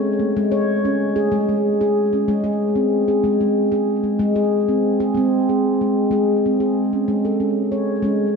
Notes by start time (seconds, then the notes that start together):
Already playing: G#3 C#5
0.20 A3
0.37 G#3
0.52 C#5
0.85 C#4
1.16 G#4
1.32 G#3
1.49 G#3
1.81 G#4
2.13 C#4
2.28 G#3
2.44 G#4
2.75 C4
3.08 G#4
3.24 G#3
3.41 G#3
3.72 G#4
4.04 G#3
4.19 G#3
4.36 G#4
4.68 C4
5.00 G#4
5.14 G#3 C4
5.49 G#4
5.81 G#3
6.11 G#3 G#4
6.46 C4
6.60 G#4
6.93 C#4
7.08 G#3
7.25 A4
7.40 C#4
7.72 C#5
8.02 G#3 C#4